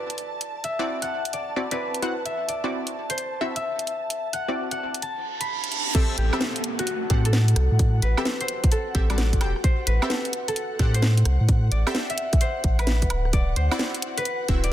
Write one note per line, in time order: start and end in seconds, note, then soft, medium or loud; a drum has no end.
0.00 1.45 B4 medium
0.00 1.33 D5 medium
0.00 5.96 A5 medium
0.10 closed hi-hat soft
0.18 closed hi-hat soft
0.41 closed hi-hat medium
0.64 2.25 E5 medium
0.64 closed hi-hat medium
0.79 1.54 C4 medium
0.79 1.54 E4 medium
0.79 1.54 F#4 medium
0.79 1.54 D5 medium
1.02 2.63 F#5 medium
1.02 closed hi-hat soft
1.25 closed hi-hat medium
1.33 2.48 D5 medium
1.33 closed hi-hat medium
1.56 1.68 C4 medium
1.56 1.68 E4 medium
1.56 1.68 F#4 medium
1.56 1.68 D5 medium
1.71 2.01 C4 medium
1.71 2.01 E4 medium
1.71 2.01 F#4 medium
1.71 3.16 B4 medium
1.71 2.01 D5 medium
1.71 closed hi-hat medium
1.94 closed hi-hat soft
2.02 2.14 C4 medium
2.02 2.14 E4 medium
2.02 2.14 F#4 medium
2.02 2.14 F#5 loud
2.02 closed hi-hat soft
2.25 3.55 E5 medium
2.25 closed hi-hat medium
2.49 4.33 D5 medium
2.49 closed hi-hat medium
2.64 3.39 C4 medium
2.64 3.39 E4 medium
2.64 3.39 F#4 medium
2.64 3.39 D5 medium
2.87 closed hi-hat soft
3.10 5.08 C5 medium
3.10 closed hi-hat medium
3.18 closed hi-hat medium
3.41 3.58 C4 medium
3.41 3.58 E4 medium
3.41 3.58 F#4 medium
3.41 3.58 E5 medium
3.56 5.28 E5 medium
3.56 closed hi-hat medium
3.79 closed hi-hat soft
3.87 closed hi-hat soft
4.10 closed hi-hat medium
4.33 4.71 F#5 medium
4.33 closed hi-hat medium
4.48 5.24 C4 medium
4.48 5.24 E4 medium
4.48 5.24 F#4 medium
4.48 5.24 D5 loud
4.71 6.24 F#5 medium
4.71 closed hi-hat soft
4.94 closed hi-hat medium
5.02 6.47 A5 medium
5.02 closed hi-hat medium
5.02 reverse cymbal medium
5.41 6.76 B5 medium
5.41 closed hi-hat medium
5.64 closed hi-hat soft
5.72 closed hi-hat soft
5.95 6.27 C4 loud
5.95 6.27 G4 medium
5.95 7.25 A4 loud
5.95 6.27 A4 medium
5.95 6.27 E5 loud
5.95 14.73 F#5 medium
5.95 kick loud
5.95 closed hi-hat medium
5.95 crash loud
5.95 downlifter medium
6.18 6.31 A1 medium
6.18 6.85 G4 medium
6.18 closed hi-hat loud
6.33 7.08 C4 medium
6.33 7.08 G4 medium
6.33 7.08 A4 medium
6.33 7.08 E5 loud
6.33 high woodblock medium
6.41 snare loud
6.56 closed hi-hat soft
6.64 closed hi-hat loud
6.79 9.09 F#4 medium
6.79 cross-stick soft
6.79 closed hi-hat medium
6.87 closed hi-hat medium
7.10 7.54 A2 loud
7.10 7.27 C4 medium
7.10 7.27 G4 medium
7.10 7.27 A4 medium
7.10 7.27 F#5 loud
7.10 kick loud
7.10 cross-stick medium
7.10 closed hi-hat loud
7.25 8.71 A4 medium
7.25 closed hi-hat medium
7.33 snare loud
7.48 closed hi-hat soft
7.56 7.69 C2 loud
7.56 cross-stick medium
7.56 closed hi-hat loud
7.72 8.01 A2 loud
7.79 kick loud
7.79 closed hi-hat medium
8.02 8.15 A1 loud
8.02 8.47 B4 medium
8.02 closed hi-hat loud
8.17 8.93 C4 medium
8.17 8.93 G4 medium
8.17 8.93 A4 medium
8.17 8.93 E5 loud
8.17 high woodblock medium
8.25 snare loud
8.41 9.63 C5 medium
8.41 closed hi-hat soft
8.48 closed hi-hat loud
8.64 kick loud
8.64 cross-stick soft
8.64 closed hi-hat medium
8.72 10.48 A4 loud
8.72 closed hi-hat medium
8.95 9.42 A1 medium
8.95 9.06 C4 medium
8.95 9.06 G4 medium
8.95 9.06 A4 medium
8.95 9.06 E5 medium
8.95 kick loud
8.95 closed hi-hat loud
9.10 9.39 G3 medium
9.10 9.39 C4 medium
9.10 11.53 F#4 medium
9.10 9.39 A4 medium
9.10 9.39 D5 medium
9.10 cross-stick soft
9.10 closed hi-hat medium
9.10 high woodblock medium
9.18 snare loud
9.18 closed hi-hat medium
9.33 kick medium
9.33 closed hi-hat soft
9.41 9.54 E1 medium
9.41 9.52 C4 medium
9.41 9.52 G4 medium
9.41 9.52 A4 medium
9.41 9.52 G5 loud
9.41 closed hi-hat loud
9.41 high woodblock medium
9.56 cross-stick soft
9.64 9.93 C5 loud
9.64 kick loud
9.64 closed hi-hat medium
9.87 10.00 A1 loud
9.87 11.00 B4 medium
9.87 closed hi-hat loud
10.02 10.77 C4 medium
10.02 10.77 G4 medium
10.02 10.77 A4 medium
10.02 10.77 E5 loud
10.02 high woodblock medium
10.10 snare loud
10.25 closed hi-hat soft
10.33 closed hi-hat loud
10.48 12.68 A4 loud
10.48 cross-stick soft
10.48 closed hi-hat medium
10.56 closed hi-hat medium
10.79 11.24 A2 loud
10.79 10.96 C4 medium
10.79 10.96 G4 medium
10.79 10.96 A4 medium
10.79 10.96 F#5 loud
10.79 kick loud
10.79 cross-stick medium
10.79 closed hi-hat loud
10.94 12.41 C5 medium
10.94 closed hi-hat medium
11.02 snare loud
11.18 closed hi-hat soft
11.25 11.38 C2 loud
11.25 cross-stick medium
11.25 closed hi-hat loud
11.41 11.70 A2 loud
11.49 kick loud
11.49 closed hi-hat medium
11.72 11.85 A1 loud
11.72 13.33 D5 medium
11.72 closed hi-hat loud
11.87 12.62 C4 medium
11.87 12.62 G4 medium
11.87 12.62 A4 medium
11.87 12.62 E5 loud
11.87 high woodblock medium
11.95 snare loud
12.10 13.82 E5 medium
12.10 closed hi-hat soft
12.18 closed hi-hat loud
12.33 kick loud
12.33 cross-stick soft
12.33 closed hi-hat medium
12.41 12.85 C5 loud
12.41 closed hi-hat medium
12.64 13.08 A1 medium
12.64 kick loud
12.64 closed hi-hat loud
12.79 13.62 B4 medium
12.79 cross-stick soft
12.79 closed hi-hat medium
12.79 high woodblock medium
12.87 snare loud
12.87 closed hi-hat medium
13.02 kick medium
13.02 closed hi-hat soft
13.10 13.55 D1 medium
13.10 closed hi-hat loud
13.10 high woodblock medium
13.25 cross-stick soft
13.33 14.63 D5 loud
13.33 kick loud
13.33 closed hi-hat medium
13.56 13.69 D2 medium
13.56 14.24 C5 medium
13.56 closed hi-hat loud
13.71 14.47 C4 medium
13.71 14.47 E4 medium
13.71 14.47 F#4 medium
13.71 14.47 D5 loud
13.71 high woodblock medium
13.79 snare loud
13.95 closed hi-hat soft
14.02 closed hi-hat loud
14.18 14.73 B4 loud
14.18 cross-stick soft
14.18 closed hi-hat medium
14.25 closed hi-hat medium
14.48 14.73 D1 loud
14.48 14.65 C4 medium
14.48 14.65 E4 medium
14.48 14.65 F#4 medium
14.48 14.65 E5 medium
14.48 kick loud
14.48 cross-stick medium
14.48 closed hi-hat loud
14.64 14.73 D5 medium
14.64 closed hi-hat medium